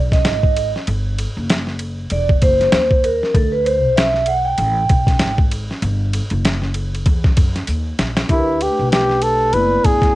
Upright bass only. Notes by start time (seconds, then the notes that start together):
Already playing: B1
0.25 G#1
0.88 G1
1.37 F#1
2.11 E1
2.42 F#1
2.73 D#2
3.35 D2
3.83 B1
4.58 A1
4.90 B1
5.20 G#1
5.82 G1
6.31 F#1
7.06 E2
7.37 F#2
7.68 D#2
7.99 A#1
8.30 D2
8.79 B1
9.53 F#1
9.85 G1